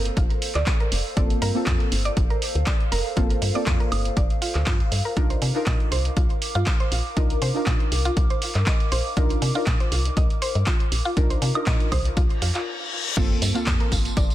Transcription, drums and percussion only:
0.05 closed hi-hat medium
0.17 kick loud
0.17 closed hi-hat medium
0.30 closed hi-hat soft
0.42 open hi-hat loud
0.55 clap soft
0.55 closed hi-hat soft
0.66 kick loud
0.66 clap loud
0.66 closed hi-hat medium
0.80 closed hi-hat soft
0.92 open hi-hat medium
1.17 kick loud
1.17 closed hi-hat medium
1.30 closed hi-hat medium
1.42 open hi-hat loud
1.66 kick loud
1.66 clap loud
1.66 closed hi-hat medium
1.80 closed hi-hat soft
1.92 open hi-hat loud
2.05 closed hi-hat soft
2.17 kick loud
2.17 closed hi-hat medium
2.30 closed hi-hat soft
2.42 open hi-hat loud
2.55 closed hi-hat soft
2.66 kick loud
2.66 clap loud
2.66 closed hi-hat medium
2.80 closed hi-hat soft
2.92 open hi-hat medium
3.17 kick loud
3.17 closed hi-hat medium
3.30 closed hi-hat medium
3.42 open hi-hat loud
3.66 kick loud
3.66 clap loud
3.66 closed hi-hat medium
3.80 closed hi-hat soft
3.92 open hi-hat medium
3.92 high woodblock medium
4.05 closed hi-hat soft
4.17 kick loud
4.17 closed hi-hat medium
4.30 closed hi-hat soft
4.42 open hi-hat loud
4.55 clap soft
4.55 closed hi-hat soft
4.66 kick loud
4.66 clap loud
4.66 closed hi-hat medium
4.80 closed hi-hat soft
4.92 open hi-hat medium
5.17 kick loud
5.17 closed hi-hat medium
5.30 closed hi-hat soft
5.42 open hi-hat loud
5.66 kick loud
5.66 clap loud
5.66 closed hi-hat medium
5.80 closed hi-hat soft
5.92 open hi-hat medium
6.05 closed hi-hat soft
6.17 kick loud
6.17 closed hi-hat medium
6.30 closed hi-hat soft
6.42 open hi-hat loud
6.55 closed hi-hat soft
6.66 kick loud
6.66 clap loud
6.66 closed hi-hat medium
6.80 closed hi-hat soft
6.92 open hi-hat medium
7.17 kick loud
7.17 closed hi-hat medium
7.30 closed hi-hat medium
7.42 open hi-hat loud
7.66 kick loud
7.66 clap loud
7.66 closed hi-hat medium
7.80 closed hi-hat soft
7.92 open hi-hat medium
8.05 closed hi-hat medium
8.17 kick loud
8.17 closed hi-hat medium
8.30 closed hi-hat soft
8.42 open hi-hat loud
8.55 clap soft
8.55 closed hi-hat soft
8.66 kick loud
8.66 clap loud
8.66 closed hi-hat medium
8.80 closed hi-hat soft
8.92 open hi-hat medium
9.17 kick loud
9.17 closed hi-hat medium
9.30 closed hi-hat medium
9.42 open hi-hat loud
9.66 kick loud
9.66 clap loud
9.66 closed hi-hat medium
9.80 closed hi-hat soft
9.92 open hi-hat medium
10.05 closed hi-hat medium
10.17 kick loud
10.17 closed hi-hat medium
10.30 closed hi-hat soft
10.42 open hi-hat loud
10.55 closed hi-hat soft
10.66 kick loud
10.66 clap loud
10.66 closed hi-hat medium
10.80 closed hi-hat soft
10.92 open hi-hat medium
11.17 kick loud
11.17 closed hi-hat medium
11.30 closed hi-hat medium
11.42 open hi-hat loud
11.55 closed hi-hat soft
11.55 high woodblock medium
11.66 kick loud
11.66 clap loud
11.66 closed hi-hat medium
11.80 closed hi-hat soft
11.92 kick medium
11.92 open hi-hat medium
11.92 high woodblock medium
12.05 closed hi-hat medium
12.17 kick loud
12.17 closed hi-hat medium
12.30 closed hi-hat soft
12.42 open hi-hat loud
12.55 clap soft
12.55 closed hi-hat soft
13.17 kick loud
13.17 closed hi-hat medium
13.17 crash loud
13.17 tambourine soft
13.42 open hi-hat loud
13.42 tambourine medium
13.55 closed hi-hat medium
13.55 tambourine soft
13.66 kick loud
13.66 clap loud
13.66 closed hi-hat medium
13.66 tambourine soft
13.80 closed hi-hat soft
13.92 kick medium
13.92 open hi-hat medium
13.92 tambourine medium
14.05 closed hi-hat medium
14.05 tambourine soft
14.17 kick loud
14.17 closed hi-hat medium
14.17 tambourine soft
14.30 closed hi-hat soft
14.30 tambourine soft

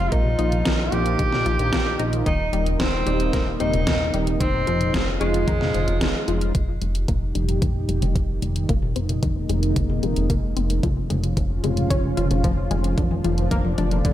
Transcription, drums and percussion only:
0.12 kick loud
0.12 closed hi-hat medium
0.25 mid tom medium
0.39 closed hi-hat medium
0.52 closed hi-hat medium
0.52 mid tom medium
0.65 kick loud
0.65 snare loud
0.65 closed hi-hat medium
0.92 closed hi-hat medium
1.06 closed hi-hat medium
1.19 kick loud
1.19 closed hi-hat medium
1.33 snare soft
1.33 mid tom medium
1.46 closed hi-hat medium
1.59 closed hi-hat medium
1.73 kick loud
1.73 snare loud
1.73 closed hi-hat medium
1.99 closed hi-hat medium
2.13 closed hi-hat medium
2.26 kick loud
2.26 closed hi-hat medium
2.53 closed hi-hat medium
2.66 closed hi-hat medium
2.80 kick loud
2.80 snare loud
2.80 closed hi-hat medium
3.07 closed hi-hat medium
3.20 closed hi-hat medium
3.33 kick loud
3.33 snare soft
3.33 closed hi-hat medium
3.60 closed hi-hat medium
3.74 closed hi-hat medium
3.74 mid tom medium
3.87 kick loud
3.87 snare loud
3.87 closed hi-hat medium
4.14 closed hi-hat medium
4.27 closed hi-hat medium
4.41 kick loud
4.41 closed hi-hat medium
4.54 mid tom medium
4.67 closed hi-hat medium
4.81 closed hi-hat medium
4.81 mid tom medium
4.94 kick loud
4.94 snare loud
4.94 closed hi-hat medium
5.21 closed hi-hat medium
5.34 closed hi-hat medium
5.48 kick loud
5.48 closed hi-hat medium
5.61 snare soft
5.61 mid tom medium
5.74 closed hi-hat medium
5.88 closed hi-hat medium
6.01 kick loud
6.01 snare loud
6.01 closed hi-hat medium
6.28 closed hi-hat medium
6.41 closed hi-hat medium
6.55 kick loud
6.55 closed hi-hat medium
6.55 mid tom soft
6.82 closed hi-hat medium
6.95 closed hi-hat medium
7.08 kick loud
7.08 closed hi-hat medium
7.08 mid tom soft
7.35 closed hi-hat medium
7.49 closed hi-hat medium
7.62 kick loud
7.62 closed hi-hat medium
7.62 mid tom medium
7.89 closed hi-hat medium
8.02 closed hi-hat medium
8.02 mid tom medium
8.16 kick loud
8.16 closed hi-hat medium
8.16 mid tom medium
8.42 closed hi-hat medium
8.56 closed hi-hat medium
8.69 kick loud
8.69 closed hi-hat loud
8.69 mid tom medium
8.82 mid tom medium
8.96 closed hi-hat medium
9.09 closed hi-hat medium
9.09 mid tom medium
9.23 kick loud
9.23 closed hi-hat medium
9.23 mid tom medium
9.49 closed hi-hat medium
9.63 closed hi-hat medium
9.76 kick loud
9.76 closed hi-hat medium
9.76 mid tom medium
9.90 mid tom medium
10.03 closed hi-hat medium
10.16 closed hi-hat medium
10.30 kick loud
10.30 closed hi-hat medium
10.30 mid tom medium
10.57 closed hi-hat medium
10.70 closed hi-hat medium
10.83 kick loud
10.83 closed hi-hat medium
10.83 mid tom medium
11.10 closed hi-hat medium
11.10 mid tom medium
11.24 closed hi-hat medium
11.37 kick loud
11.37 closed hi-hat medium
11.37 mid tom medium
11.64 closed hi-hat medium
11.64 mid tom medium
11.77 closed hi-hat medium
11.90 kick loud
11.90 closed hi-hat medium
11.90 mid tom medium
12.17 closed hi-hat medium
12.17 mid tom medium
12.31 closed hi-hat medium
12.31 mid tom medium
12.44 kick loud
12.44 closed hi-hat medium
12.44 mid tom medium
12.71 closed hi-hat medium
12.71 mid tom medium
12.84 closed hi-hat medium
12.98 kick loud
12.98 closed hi-hat medium
12.98 mid tom medium
13.11 mid tom medium
13.24 closed hi-hat medium
13.24 mid tom medium
13.38 closed hi-hat medium
13.38 mid tom medium
13.51 kick loud
13.51 closed hi-hat medium
13.51 mid tom medium
13.65 mid tom medium
13.78 closed hi-hat medium
13.78 mid tom loud
13.91 closed hi-hat medium
13.91 mid tom medium
14.05 kick loud
14.05 closed hi-hat medium
14.05 mid tom loud

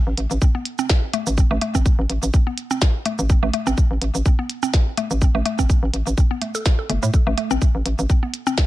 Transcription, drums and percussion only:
0.18 closed hi-hat loud
0.31 cabasa medium
0.42 kick loud
0.42 cabasa soft
0.65 closed hi-hat medium
0.79 cabasa medium
0.89 kick loud
0.89 snare loud
0.89 cabasa soft
1.14 closed hi-hat medium
1.27 cabasa medium
1.38 kick loud
1.38 cabasa soft
1.61 closed hi-hat medium
1.75 kick medium
1.75 cabasa medium
1.86 kick loud
1.86 cabasa soft
2.10 closed hi-hat medium
2.23 cabasa medium
2.34 kick loud
2.34 cabasa soft
2.58 closed hi-hat medium
2.71 cabasa medium
2.82 kick loud
2.82 snare loud
2.82 cabasa soft
3.06 closed hi-hat loud
3.19 cabasa soft
3.30 kick loud
3.30 cabasa soft
3.54 closed hi-hat loud
3.67 cabasa medium
3.78 kick loud
3.78 cabasa soft
4.02 closed hi-hat loud
4.15 cabasa soft
4.26 kick loud
4.26 cabasa soft
4.50 closed hi-hat loud
4.63 cabasa medium
4.74 kick loud
4.74 snare loud
4.74 cabasa soft
4.97 closed hi-hat medium
5.11 cabasa soft
5.22 kick loud
5.22 cabasa soft
5.46 closed hi-hat medium
5.59 kick medium
5.59 cabasa medium
5.70 kick loud
5.70 cabasa soft
5.94 closed hi-hat loud
6.07 cabasa soft
6.18 kick loud
6.18 cabasa soft
6.42 closed hi-hat loud
6.55 cabasa medium
6.66 kick loud
6.66 snare loud
6.66 cabasa soft
6.90 closed hi-hat medium
7.03 cabasa soft
7.14 kick loud
7.14 cabasa soft
7.38 closed hi-hat medium
7.51 cabasa soft
7.62 kick loud
7.62 cabasa soft
7.86 closed hi-hat medium
7.99 cabasa medium
8.10 kick loud
8.10 cabasa soft
8.34 closed hi-hat loud
8.47 cabasa medium
8.58 kick loud
8.58 snare loud
8.58 cabasa soft

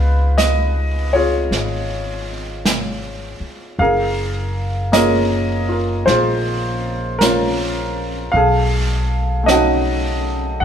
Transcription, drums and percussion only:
0.38 brush sweep soft
0.38 snare soft
0.38 hi-hat pedal soft
1.52 brush sweep soft
1.52 snare soft
2.66 brush sweep soft
2.66 snare soft
2.66 hi-hat pedal soft
3.79 brush sweep soft
4.93 brush sweep soft
4.93 snare soft
4.93 hi-hat pedal soft
6.07 brush sweep soft
6.07 snare soft
7.21 brush sweep soft
7.21 snare soft
7.21 hi-hat pedal soft
8.35 brush sweep soft
9.48 brush sweep soft
9.48 snare soft
9.48 hi-hat pedal soft

